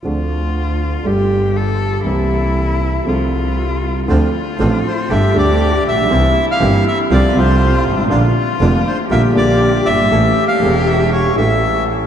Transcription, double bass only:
\new Staff \with { instrumentName = "Double bass" } { \clef bass \time 4/4 \key d \minor \tempo 4 = 119 d,2 g,,2 | c,2 c,2 | d,8 r8 a,,8 r8 g,,8 d,4 bes,,8 | c,8 r8 g,,8 r8 c,8 c,4 gis,,8 |
bes,,8 r8 f,,8 r8 bes,,8 bes,,4 g,,8 | a,,8 r8 e,,4. a,,4. | }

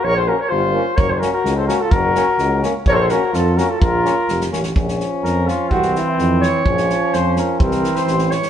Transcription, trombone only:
\new Staff \with { instrumentName = "Trombone" } { \time 2/4 \tempo 4 = 127 r8 des'8 r8 des'8 | r8 des'8 r8 des'8 | r8 des'8 r8 des'8 | r8 des'8 r8 des'8 |
r8 des'8 r8 des'8 | des'2 | c'2 | des'2 |
c'4. r8 | }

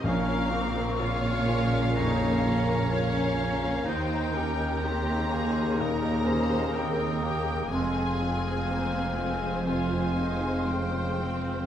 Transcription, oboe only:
\new Staff \with { instrumentName = "Oboe" } { \time 4/4 \key bes \dorian \tempo 4 = 62 f''8 r8 f''4 bes''4 aes''4 | g''2 ees''4. r8 | f''2 f''2 | }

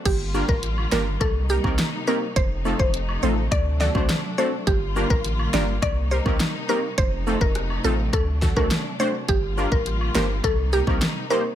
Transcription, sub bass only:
\new Staff \with { instrumentName = "Sub bass" } { \clef bass \time 4/4 \key g \minor \tempo 4 = 104 g,,8. a,,8. g,,8 c,8. c,16 r4 | f,,8. f,,8. a,,8 d,8. c,16 r4 | g,,8. a,,8. g,,8 c,8. c,16 r4 | f,,8. f,,8. a,,8 d,8. c,16 r4 |
g,,8. a,,8. g,,8 c,8. c,16 r4 | }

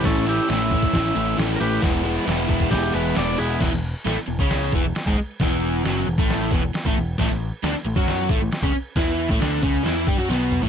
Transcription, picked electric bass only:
\new Staff \with { instrumentName = "Picked electric bass" } { \clef bass \time 4/4 \key a \major \tempo 4 = 135 a,,4 a,,4 a,,8 a,,8 a,,8 a,,8 | e,,4 e,,8 e,,8 e,,8 e,,8 e,,8 e,,8 | e,,16 e,,8 r16 a,,16 r16 e,,16 cis,8. e,,16 e,,16 r16 gis,,16 r8 | e,,4 fis,,8 e,,16 a,,8. e,,16 e,,16 r16 a,,16 e,,8 |
a,,16 a,,8 r16 d,16 r16 a,,16 fis,8. a,,16 a,,16 r16 cis,16 r8 | e,8. a,,16 d,8 cis,8 e,8 g,16 fis,16 b,,8. a,,16 | }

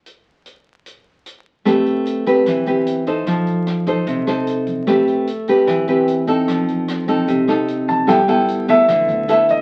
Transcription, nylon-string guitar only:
\new Staff \with { instrumentName = "Nylon-string guitar" } { \time 4/4 \key a \dorian \tempo 4 = 150 << { r1 | <c' g' b'>4. <c' g' b'>4 <c' g' b'>4 <ees' a' c''>8~ | <ees' a' c''>4. <ees' a' c''>4 <ees' a' c''>4. | <c' g' b'>4 r8 <c' g' b'>4 <c' g' b'>4 <c' ees' a'>8~ |
<c' ees' a'>4. <c' ees' a'>4 <c' ees' a'>4. | <b e' a'>8 <b e' a'>4 <b e' a'>4. <b e' a'>4 | } \\ { r1 | a2 e2 | f2 c2 | a2 e2 |
f2 c2 | g2 d2 | } >> }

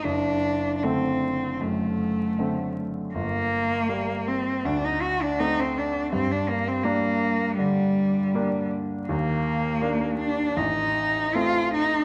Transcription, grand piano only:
\new Staff \with { instrumentName = "Grand piano" } { \time 4/4 \key g \minor \tempo 4 = 79 fis,,4 <d a c'>4 fis,4 <d a c'>4 | g,,4 <g bes>4 d,4 <a c'>4 | g,4 <g bes d'>4 d4 <g bes d'>4 | ees,4 <bes d'>4 a,,4 <a c'>4 | }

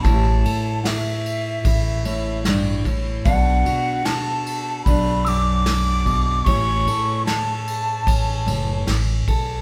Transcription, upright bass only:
\new Staff \with { instrumentName = "Upright bass" } { \clef bass \time 4/4 \key b \minor \tempo 4 = 75 a,,8 a,4. a,,2 | b,,8 b,4. b,,2 | a,,8 a,4. a,,8 fis,,8 a,,8 b,,8 | }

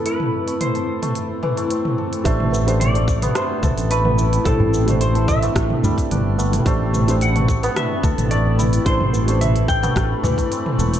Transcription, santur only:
\new Staff \with { instrumentName = "Santur" } { \time 4/4 \key a \minor \tempo 4 = 109 e'16 r8 a8 a'16 r16 a16 r8 e16 a16 c'16 r16 a'16 r16 | a16 r8 c'8 a16 r16 b16 r8 a'8 a16 r16 e'16 r16 | e'16 r8 a8 a'16 r16 a16 r8 g8 d'16 r16 a16 r16 | a16 r8 c'8 a16 r16 b16 r8 a'8 a16 r16 e'16 r16 |
e'16 r8 a8 a'16 r16 a16 r8 e16 a16 c'16 r16 a'16 r16 | }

